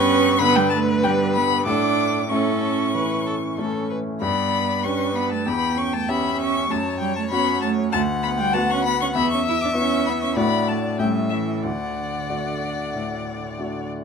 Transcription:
0.00 1.69 G2 medium
0.00 0.36 B3 medium
0.00 0.40 C#4 loud
0.00 0.37 G4 medium
0.00 0.38 B4 medium
0.00 0.40 C#6 loud
0.38 1.41 D3 medium
0.38 1.63 B4 medium
0.38 0.57 B5 loud
0.43 0.58 B3 loud
0.56 0.72 G3 medium
0.56 0.69 G5 loud
0.70 0.78 A5 medium
0.75 1.07 A3 medium
1.03 1.38 G3 medium
1.03 1.62 B3 medium
1.03 1.62 G4 medium
1.03 1.11 G5 medium
1.34 1.67 B3 medium
1.34 1.65 B5 medium
1.65 2.28 A2 medium
1.65 2.30 D4 medium
1.65 2.22 A4 medium
1.65 2.31 D6 medium
2.30 2.90 A3 soft
2.30 3.87 C#4 medium
2.30 2.91 C#4 soft
2.30 2.91 E4 soft
2.30 2.90 A4 medium
2.30 3.89 C#6 medium
2.94 3.97 E3 soft
2.94 3.25 B4 medium
3.26 3.34 A4 medium
3.58 4.17 A3 soft
3.58 4.18 C#4 soft
3.58 4.18 E4 soft
3.58 3.89 A4 medium
3.90 3.98 B4 medium
4.21 4.82 G2 medium
4.21 4.86 B3 medium
4.21 4.86 D5 medium
4.21 4.85 B5 medium
4.83 5.15 C#4 medium
4.83 5.43 D4 soft
4.83 5.43 G4 soft
4.83 5.46 B4 medium
4.83 5.17 C#6 medium
5.15 5.34 B3 medium
5.15 5.31 B5 medium
5.32 5.50 A3 medium
5.32 5.49 A5 medium
5.46 6.07 E2 medium
5.46 5.79 B3 medium
5.46 6.10 G5 medium
5.46 5.79 B5 medium
5.77 5.96 C#4 medium
5.77 5.95 C#6 medium
5.93 6.10 A3 medium
5.93 6.11 A5 medium
6.08 6.39 B3 medium
6.08 6.67 C#4 soft
6.08 6.67 G4 soft
6.08 6.69 E5 medium
6.08 6.40 B5 medium
6.40 6.68 C#4 medium
6.40 6.72 C#6 medium
6.69 7.30 F#2 medium
6.69 6.77 A3 medium
6.69 7.91 C#5 medium
6.69 7.00 A5 medium
7.00 7.16 G3 medium
7.00 7.15 G5 medium
7.16 7.24 A3 medium
7.16 7.22 A5 medium
7.29 7.62 B3 medium
7.29 7.89 C#4 soft
7.29 7.90 F#4 medium
7.29 7.61 B5 medium
7.62 7.93 A3 medium
7.62 7.70 A5 medium
7.92 8.53 D2 medium
7.92 8.03 A3 medium
7.92 9.16 F#5 medium
7.92 8.00 A5 loud
8.23 8.41 B3 medium
8.23 8.29 B5 medium
8.38 8.59 G3 medium
8.38 8.54 G5 medium
8.53 9.11 B3 medium
8.53 9.11 F#4 medium
8.53 8.72 A5 medium
8.58 8.71 A3 medium
8.70 8.86 C#4 medium
8.70 8.84 C#6 medium
8.84 8.92 B3 medium
8.84 8.99 B5 loud
9.01 9.08 C#4 medium
9.01 9.07 C#6 medium
9.14 9.74 E2 medium
9.14 10.37 E5 medium
9.14 9.29 B5 loud
9.18 9.32 B3 medium
9.31 9.39 C#4 medium
9.31 9.45 C#6 medium
9.45 9.54 E4 medium
9.45 9.62 E6 medium
9.61 9.70 D4 medium
9.61 9.75 D6 medium
9.74 10.32 B3 soft
9.74 10.32 E4 soft
9.74 10.05 C#6 medium
9.79 10.11 C#4 medium
10.06 10.25 B3 medium
10.06 10.12 B5 medium
10.22 10.38 C#4 medium
10.22 10.35 C#6 medium
10.36 10.97 A2 medium
10.36 10.95 A3 soft
10.36 10.47 B3 medium
10.36 10.95 D4 soft
10.36 10.96 F#4 soft
10.36 11.01 D5 medium
10.36 10.70 B5 medium
10.68 10.78 A3 soft
10.68 10.98 A5 medium
10.99 11.61 A2 medium
10.99 11.59 A3 soft
10.99 11.59 C#4 soft
10.99 11.60 E4 soft
10.99 11.64 E5 medium
10.99 11.07 G5 medium
11.03 11.34 G3 medium
11.29 11.67 E3 medium
11.29 11.37 E5 medium
11.62 12.27 D2 soft
11.62 13.94 D3 medium
11.62 13.88 D5 medium
11.62 13.93 F#5 medium
12.30 12.91 A3 soft
12.30 12.91 D4 soft
12.30 12.91 F#4 soft
12.94 13.99 A2 soft
13.59 14.04 A3 soft
13.59 14.04 D4 soft
13.59 14.04 F#4 soft

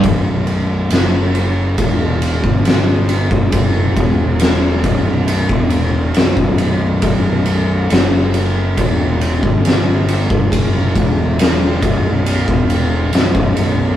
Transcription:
0.04 0.88 B0 medium
0.04 kick loud
0.04 ride medium
0.47 ride medium
0.90 1.75 F#1 medium
0.90 snare loud
0.90 ride loud
1.35 ride medium
1.78 2.40 E1 medium
1.78 kick loud
1.78 ride medium
2.22 ride medium
2.44 3.28 G1 loud
2.44 kick loud
2.65 snare loud
2.65 ride medium
3.09 ride medium
3.31 3.93 F#1 medium
3.31 kick loud
3.52 kick loud
3.52 ride loud
3.97 4.81 E1 loud
3.97 kick loud
3.97 ride medium
4.40 snare loud
4.40 ride loud
4.84 5.46 B0 medium
4.84 kick loud
4.84 ride medium
5.28 ride medium
5.49 6.12 E1 medium
5.49 kick loud
5.70 ride medium
6.14 6.37 B0 medium
6.14 snare loud
6.14 ride medium
6.37 6.99 B0 medium
6.37 kick medium
6.58 ride medium
7.02 7.86 B0 loud
7.02 kick loud
7.02 ride medium
7.46 ride medium
7.90 8.74 F#1 loud
7.90 snare loud
7.90 ride medium
8.34 ride medium
8.77 9.39 E1 medium
8.77 kick loud
8.77 ride medium
9.21 ride medium
9.43 10.26 G1 loud
9.43 kick medium
9.65 snare loud
9.65 ride medium
10.08 ride medium
10.30 10.92 F#1 medium
10.30 kick loud
10.52 kick loud
10.52 ride loud
10.96 11.79 E1 medium
10.96 kick loud
10.96 ride medium
11.39 snare loud
11.39 ride loud
11.82 12.44 B0 medium
11.82 kick loud
11.82 ride medium
12.26 ride medium
12.48 13.09 E1 medium
12.48 kick loud
12.70 ride medium
13.13 13.34 B0 medium
13.13 snare loud
13.13 ride medium
13.35 13.96 B0 loud
13.35 kick loud
13.57 ride medium

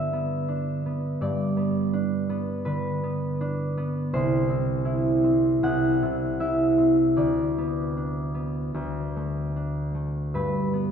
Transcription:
0.00 1.20 G2 soft
0.00 1.25 D3 soft
0.00 0.12 B3 soft
0.00 0.47 D4 soft
0.00 2.06 B4 medium
0.00 2.23 E5 medium
0.13 0.85 B3 soft
0.48 1.92 D4 soft
0.86 1.56 B3 soft
1.21 4.16 G2 medium
1.21 4.16 D5 medium
1.57 2.28 B3 soft
1.93 3.40 D4 soft
2.29 3.02 B3 soft
2.65 4.16 D3 soft
2.65 4.15 B4 medium
3.03 3.76 B3 soft
3.41 4.16 D4 soft
3.77 4.16 B3 soft
4.13 5.62 C2 medium
4.13 7.20 C5 medium
4.50 5.23 C4 soft
4.85 6.39 E4 soft
5.24 6.76 C4 soft
5.63 7.20 C2 soft
5.63 6.93 F#5 medium
6.03 7.21 C3 soft
6.40 7.20 E4 soft
6.40 7.20 E5 medium
6.78 7.20 C4 soft
7.16 8.73 D2 soft
7.16 10.91 D5 medium
7.58 8.33 B3 soft
7.97 9.55 D4 soft
8.34 8.78 B3 soft
8.74 10.37 D2 soft
9.16 9.93 A3 soft
9.56 10.91 D4 soft
9.94 10.37 A3 soft
10.34 10.91 G2 soft
10.34 10.91 B4 medium
10.73 10.91 B3 soft

